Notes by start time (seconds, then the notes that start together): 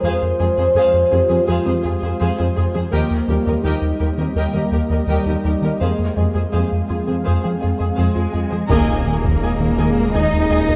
Already playing: G4
0.01 F2 F3 G#3 F4 G#4 C5 F5
0.22 F2
0.39 F2 G#3 F4 G#4
0.57 F2 G#3 G#4 C5
0.74 F2 F3 G#4 C5 F5
0.93 F2
1.11 F2 F4 G4 G#4
1.29 F2 F3 C4 G#4 C5
1.47 F2 F3 F4 G#4 C5 F5
1.65 F2 F3 C4 G#4 C5
1.83 F2 G#3 F4 G#4
2.01 F2 G#3 G#4 C5
2.20 F2 F3 G#4 C5 F5
2.38 F2 F4 G#4 C5
2.56 F2 F4 G#4
2.74 F2 F3 C4 G#4 C5
2.90 D#2 D#3 G3 A#3 G4 A#4 D#5 G5
3.10 D#2
3.28 D#2 G3 G4 A#4
3.46 D#2 G3 G4 A#4 D#5
3.63 D#2 D#3 D#4 G4 A#4 D#5 G5
3.81 D#2
3.99 D#2 D#4 G4 A#4
4.17 D#2 D#3 A#3 C4 G4 A#4 D#5
4.35 D#2 D#3 A#3 G4 A#4 D#5 G5
4.54 D#2 D#3 A#3 G4 A#4 D#5
4.72 D#2 G3 G4 A#4
4.90 D#2 G3 G4 A#4 D#5
5.07 D#2 D#3 G3 G4 A#4 D#5 G5
5.26 D#2 D#4 G4 A#4 D#5
5.44 D#2 D#4 G4 A#4
5.62 D#2 D#3 A#3 G4 A#4 D#5
5.80 F2 F3 G#3 A#3 C4 G#4 A#4 C5 F5
5.99 F2
6.16 F2 G#3 F4 G#4
6.34 F2 G#3 G#4 C5
6.52 F2 F3 G#4 C5 F5
6.72 F2
6.88 F2 F4 G#4
7.07 F2 F3 C4 G#4 C5
7.24 F2 F3 G#4 C5 F5
7.42 F2 F3 C4 G#4 C5
7.61 F2 G#3 F4 G#4
7.78 F2 G#3 G#4 C5
7.96 F2 F3 G#3 G#4 C5 F5 G#5
8.15 F2 F4 G#4 C5
8.33 F2 F4 G#4
8.50 F2 F3 C4 G#4 C5
8.68 D#1 D#2 D#3 G#3 A#3 G#4 D#5 G#5 A#5, taiko
8.88 D#2 D#4
9.06 D#3 A#3 G#4 D#5 G#5
9.24 D#2 D#3, taiko
9.42 D#2 D#4 G#4 D#5 G#5
9.60 D#3 A#3
9.78 D#2 D#3 G#3 G#4 D#5 G#5
9.96 D#2 G#3
10.12 D#2 D#3 D#4 G#4 D#5 G#5 D#6
10.33 D#2
10.50 D#2 G#3 G#4 D#5 G#5
10.69 D#2 D#3, taiko